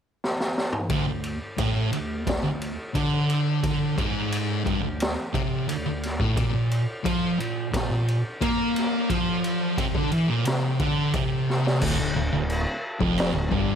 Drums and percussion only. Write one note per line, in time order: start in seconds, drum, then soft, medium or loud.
0.24 snare medium
0.40 snare medium
0.58 snare medium
0.73 mid tom medium
0.90 kick loud
0.90 ride medium
1.24 ride medium
1.58 kick loud
1.58 ride medium
1.93 ride medium
2.27 kick loud
2.27 snare loud
2.27 ride medium
2.62 ride medium
2.95 kick loud
2.95 ride medium
3.30 ride medium
3.63 kick loud
3.63 ride medium
3.98 kick medium
3.98 ride medium
4.32 ride medium
4.66 kick loud
4.66 ride medium
5.00 snare loud
5.00 ride medium
5.34 kick loud
5.34 ride medium
5.69 ride medium
6.03 snare soft
6.03 ride medium
6.20 kick medium
6.37 kick loud
6.37 ride medium
6.71 ride medium
7.05 kick loud
7.05 ride medium
7.40 ride medium
7.74 kick loud
7.74 snare loud
7.74 ride medium
8.08 ride medium
8.42 kick loud
8.42 ride medium
8.76 snare soft
8.76 ride medium
9.10 kick loud
9.10 ride medium
9.44 ride medium
9.78 kick loud
9.78 ride medium
9.95 kick loud
10.12 ride medium
10.45 snare loud
10.45 ride medium
10.79 kick loud
10.79 ride medium
11.14 kick loud
11.14 ride medium
11.50 snare medium
11.67 snare medium
11.82 kick loud
11.82 crash loud
11.82 crash medium
12.50 crash medium
13.01 kick loud
13.18 snare loud
13.18 crash medium
13.52 kick loud